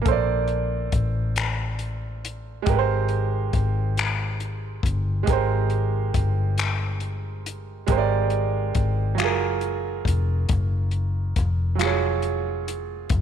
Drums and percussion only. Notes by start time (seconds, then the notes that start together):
0.06 kick, closed hi-hat
0.48 closed hi-hat
0.92 kick, closed hi-hat
1.36 finger snap, closed hi-hat
1.79 closed hi-hat
2.25 closed hi-hat
2.66 kick, closed hi-hat
3.09 closed hi-hat
3.53 kick, closed hi-hat
3.97 finger snap, closed hi-hat
4.40 closed hi-hat
4.83 kick, closed hi-hat
5.27 kick, closed hi-hat
5.70 closed hi-hat
6.14 kick, closed hi-hat
6.58 finger snap, closed hi-hat
7.00 closed hi-hat
7.46 closed hi-hat
7.88 kick, closed hi-hat
8.30 closed hi-hat
8.75 kick, closed hi-hat
9.18 finger snap, closed hi-hat
9.61 closed hi-hat
10.05 kick, closed hi-hat
10.49 kick, closed hi-hat
10.91 closed hi-hat
11.36 kick, closed hi-hat
11.79 finger snap, closed hi-hat
12.22 closed hi-hat
12.68 closed hi-hat
13.10 kick, closed hi-hat